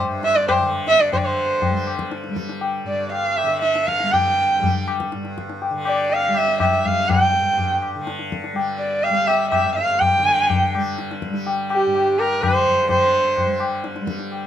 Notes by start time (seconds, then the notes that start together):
Already playing: D3 G3
0.01 G2
0.23 E5, tabla te
0.35 D5, tabla te
0.48 C5, tabla na, tabla ge
0.59 D3
0.87 E5, tabla te
1.00 D5, tabla te
1.11 D3 C5, tabla tin, tabla ge
1.17 D5
1.25 C5
1.62 tabla tin, tabla ge
1.70 G3
1.87 tabla na
1.99 tabla ke
2.12 tabla te
2.24 tabla te
2.29 G3
2.36 tabla ke
2.49 tabla te
2.61 tabla tin
2.84 G2 D5
3.12 F5, tabla tin
3.37 E5, tabla na
3.43 D3
3.61 E5, tabla te
3.75 tabla te
3.87 F5, tabla ke
4.00 G3, tabla te
4.12 G5, tabla tin, tabla ge
4.59 G3, tabla tin, tabla ge
4.88 tabla na
5.00 tabla ke
5.12 G2, tabla te
5.25 tabla te
5.38 tabla ke
5.50 tabla te
5.62 tabla tin
5.71 D3
5.85 D5, tabla na
6.10 F5, tabla tin
6.28 G3
6.34 E5, tabla na
6.60 E5, tabla na, tabla ge
6.84 G3 F5, tabla ge
7.08 G5, tabla tin, tabla ge
7.40 G2
7.58 tabla tin, tabla ge
7.82 tabla na
7.96 D3
8.07 tabla te
8.19 tabla te
8.32 tabla ke
8.44 tabla te
8.53 G3, tabla tin
8.79 D5
9.03 F5, tabla tin
9.10 G3
9.27 E5, tabla na
9.50 E5, tabla na, tabla ge
9.64 G2
9.75 F5, tabla te
10.00 G5, tabla tin, tabla ge
10.19 D3
10.50 tabla tin, tabla ge
10.75 G3, tabla na
10.99 tabla te
11.11 tabla te
11.22 tabla ke
11.30 G3, tabla te
11.47 tabla tin
11.70 G4, tabla na
11.87 G2
11.95 tabla tin
12.19 A#4, tabla na
12.41 D3 C5, tabla na, tabla ge
12.67 tabla ge
12.89 D3 C5, tabla tin, tabla ge
13.37 tabla tin, tabla ge
13.46 G3
13.60 tabla na
13.84 tabla te
13.96 tabla te
14.01 G3
14.07 tabla ke
14.19 tabla te
14.32 tabla tin